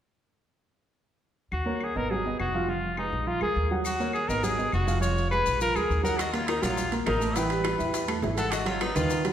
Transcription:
1.52 D#2 F#4, claves
1.66 A#3 A#4 C#5
1.81 G#4, claves
1.95 G#1 B3 A#4 B4 D#5
2.11 F#3 F#4 G#4 F#5
2.26 B3 B4 D#5
2.40 F1 F#4, claves
2.55 F3 F4 F5
2.68 F3 F4 F5
2.97 G#3 D#4 G#4 B4, claves
3.12 A#1
3.27 F3 F4 F5
3.41 D2 G#3 G#4 A#4, claves
3.56 D#2
3.71 F#3 F#4 F#5
3.85 F#4, claves, maracas
4.00 A#3 A#4 C#5, maracas
4.13 G#4, claves, maracas
4.28 G#1 B3 A#4 B4 D#5, maracas
4.43 F#3 F#4 G#4 F#5, maracas
4.58 B3 B4 D#5, maracas
4.72 F1 F#4, claves, maracas
4.87 F3 F4 F5, maracas
5.01 F3 F4 C#5 F5, maracas
5.18 maracas
5.31 G#3 G#4 B4, claves, maracas
5.46 A#1, maracas
5.61 F3 F4 A#4 F5, maracas
5.75 D2 G#3 G#4 A#4, claves, maracas
5.90 D#2, maracas
6.03 F#3 F#4 A#4 F#5, maracas
6.18 F#4 D#5, high bongo, high timbale, claves, maracas
6.32 A#3 F4 A#4 C#5, high bongo, high timbale, maracas
6.47 D#4 A#4, high bongo, high timbale, claves, maracas
6.62 A#1 F#3 F4 F#4 C#5, high timbale, maracas
6.77 high bongo, maracas
6.92 A#3 A#4, high bongo, high timbale, maracas
7.06 A1 D#4 A#4, high bongo, low bongo, high timbale, low timbale, claves, maracas
7.20 A3 A4, high bongo, maracas
7.35 E3 E4 B4 G5, high bongo, high timbale, maracas
7.50 G3 G4, high bongo, high timbale, maracas
7.64 high bongo, high timbale, claves, maracas
7.78 E2 E4 E5, maracas
7.94 high bongo, high timbale, maracas
8.08 A3 A4, high bongo, high timbale, claves, maracas
8.22 G#1 E3 E4, high bongo, low bongo, low timbale, maracas
8.36 G#3 G#4 A4 F#5, high bongo, high timbale, maracas
8.51 F#4 D#5, high bongo, high timbale, claves, maracas
8.65 F#3 F4 F#4 C#5, high bongo, high timbale, maracas
8.81 D#4 B4, high bongo, high timbale, claves, maracas
8.95 D#2 D#3 D#4 F4 B4, high timbale, maracas
9.10 high bongo, maracas
9.25 F#3 F#4, high bongo, high timbale, maracas

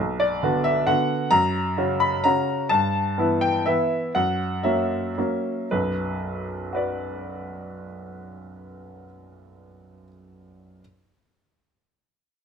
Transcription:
0.00 B1
0.20 D5
0.43 D3 B3 F#4
0.64 E5
0.87 D3 B3 F#4 F#5
1.31 F#2 A#5
1.78 C#3 C#4 F#4
2.00 B5
2.24 C#3 C#4 F#4 A#5
2.69 G2 A5
3.18 E3 B3 E4
3.41 G5
3.66 E3 B3 E4 E5
4.15 F#2 F#5
4.63 F#3 A#3 C#4 E5
5.18 F#3 A#3 C#4
5.71 B1 F#2 B4
6.73 F#4 B4 D5

